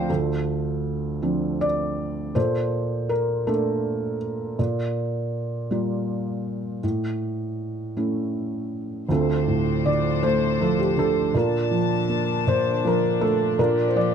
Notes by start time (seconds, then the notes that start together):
Already playing: F3 C4 D4 D5 F5 G5
0.09 D2 F4 A4
1.22 F3 C4 D4
1.61 D5
2.35 A#2 A4 C5
3.09 A#4
3.47 A3 A#3 D4 A4
4.59 A#2
5.71 G3 A#3 F4
6.83 A2
7.97 A3 C#4 E4
9.09 D2 F3 C4 D4 F4 A4 C5
9.48 A2
9.86 D3 D5
10.23 A3 C5
10.61 F3 A4
10.79 G4
10.97 D3 A4
11.32 A#2 D3 D4 A5
11.37 D4 F4 A#4
11.71 F3
12.09 A#3
12.47 A#2 C5
12.85 F3 A#4
13.21 A3 A4
13.59 A#2 F3 D4 F4 G4 A#4
13.88 C5
13.96 F3 D5